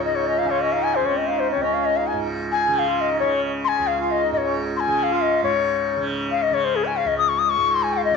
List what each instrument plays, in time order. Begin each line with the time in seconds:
Already playing: tanpura C#2 G#2 C#3, harmonium D#4
0.04 bansuri D#5
0.14 harmonium D#4, bansuri C#5
0.25 harmonium C#4, bansuri D#5
0.37 harmonium D#4, bansuri F5
0.44 tanpura C#3, harmonium G#4
0.48 harmonium F4, bansuri C#5
0.61 harmonium C#4, bansuri D#5
0.72 harmonium D#4, bansuri F5
0.83 bansuri G#5
0.95 harmonium G#4, bansuri C5
1.01 tanpura C#3
1.06 harmonium C4, bansuri C#5
1.17 bansuri D#5
1.27 harmonium D#4, bansuri F5
1.39 bansuri C5
1.50 harmonium C4, bansuri C#5
1.56 tanpura C#2
1.62 harmonium C#4, bansuri D#5
1.74 bansuri F5
1.85 bansuri D#5
1.96 harmonium D#4, bansuri F5
2.07 bansuri G#5
2.13 tanpura G#2
2.52 bansuri G#5
2.64 harmonium G#4
2.68 tanpura C#3
2.74 bansuri G#5
2.79 bansuri F5
2.86 harmonium F4
2.97 bansuri D#5 F5
3.09 harmonium D#4
3.20 tanpura C#3, bansuri C#5
3.31 harmonium C#4
3.65 bansuri G#5 C6
3.77 tanpura C#2, harmonium G#4
3.87 bansuri F5
3.99 harmonium F4
4.04 bansuri F5
4.11 bansuri D#5
4.22 harmonium D#4
4.32 tanpura G#2, bansuri D#5
4.38 bansuri C#5
4.44 harmonium C#4
4.76 bansuri G#5 C6
4.87 tanpura C#3, harmonium G#4
4.99 bansuri G#5
5.03 bansuri F5
5.10 harmonium F4
5.21 bansuri D#5
5.43 tanpura G#2, bansuri C#5
5.97 tanpura C#3
6.31 bansuri F5
6.42 bansuri D#5
6.51 tanpura C#3, bansuri C#5
6.65 bansuri C5
6.76 bansuri G#4
6.86 bansuri G#5
6.97 bansuri F5
7.05 tanpura C#2, bansuri D#5
7.18 bansuri D#6
7.29 bansuri C#6
7.39 bansuri D#6
7.50 bansuri C#6
7.57 tanpura G#2
7.72 bansuri C6
7.83 bansuri G#5
7.94 bansuri F5
8.05 bansuri D#5
8.11 tanpura C#3